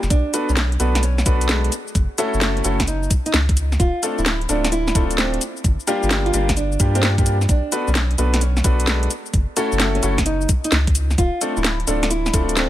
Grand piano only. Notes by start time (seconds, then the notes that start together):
0.33 B3 D4 F#4 A4 B4
0.80 B3 D4 F#4 A4 B4
1.26 B3 D4 F#4 A4 B4
2.18 A3 C#4 E4 F#4 A4
2.64 A3 C#4 E4 F#4 A4
4.03 A3 C4 D4 F4 A4
4.49 A3 C4 D4 F4 A4
4.95 A3 C4 D4 F4 A4
5.87 G3 A#3 D4 F4 G4
6.34 G3 A#3 D4 F4 G4
6.80 G3 A#3 D4 F4 G4
6.95 G3 A#3 D4 F4 G4
7.18 G3 A#3 D4 F4 G4
7.72 B3 D4 F#4 A4 B4
8.18 B3 D4 F#4 A4 B4
8.64 B3 D4 F#4 A4 B4
9.57 A3 C#4 E4 F#4 A4
10.03 A3 C#4 E4 F#4 A4
11.41 A3 C4 D4 F4 A4
11.87 A3 C4 D4 F4 A4
12.33 A3 C4 D4 F4 A4